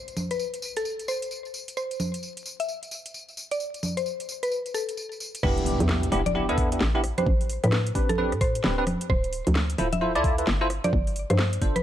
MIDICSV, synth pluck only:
0, 0, Header, 1, 2, 480
1, 0, Start_track
1, 0, Tempo, 458015
1, 1854, Time_signature, 4, 2, 24, 8
1, 12397, End_track
2, 0, Start_track
2, 0, Title_t, "Synth pluck"
2, 0, Program_c, 0, 84
2, 323, Note_on_c, 0, 71, 85
2, 412, Note_off_c, 0, 71, 0
2, 804, Note_on_c, 0, 69, 92
2, 963, Note_off_c, 0, 69, 0
2, 1135, Note_on_c, 0, 72, 92
2, 1326, Note_off_c, 0, 72, 0
2, 1854, Note_on_c, 0, 72, 95
2, 2045, Note_off_c, 0, 72, 0
2, 2724, Note_on_c, 0, 76, 86
2, 2812, Note_off_c, 0, 76, 0
2, 3684, Note_on_c, 0, 74, 90
2, 3772, Note_off_c, 0, 74, 0
2, 4162, Note_on_c, 0, 72, 86
2, 4251, Note_off_c, 0, 72, 0
2, 4642, Note_on_c, 0, 71, 89
2, 4802, Note_off_c, 0, 71, 0
2, 4972, Note_on_c, 0, 69, 90
2, 5164, Note_off_c, 0, 69, 0
2, 5693, Note_on_c, 0, 71, 100
2, 5884, Note_off_c, 0, 71, 0
2, 6562, Note_on_c, 0, 74, 91
2, 6651, Note_off_c, 0, 74, 0
2, 7524, Note_on_c, 0, 72, 90
2, 7612, Note_off_c, 0, 72, 0
2, 8003, Note_on_c, 0, 71, 87
2, 8092, Note_off_c, 0, 71, 0
2, 8482, Note_on_c, 0, 69, 92
2, 8642, Note_off_c, 0, 69, 0
2, 8814, Note_on_c, 0, 72, 98
2, 9005, Note_off_c, 0, 72, 0
2, 9533, Note_on_c, 0, 72, 106
2, 9725, Note_off_c, 0, 72, 0
2, 10403, Note_on_c, 0, 76, 92
2, 10492, Note_off_c, 0, 76, 0
2, 11364, Note_on_c, 0, 74, 94
2, 11452, Note_off_c, 0, 74, 0
2, 11842, Note_on_c, 0, 72, 90
2, 11931, Note_off_c, 0, 72, 0
2, 12322, Note_on_c, 0, 71, 92
2, 12397, Note_off_c, 0, 71, 0
2, 12397, End_track
0, 0, End_of_file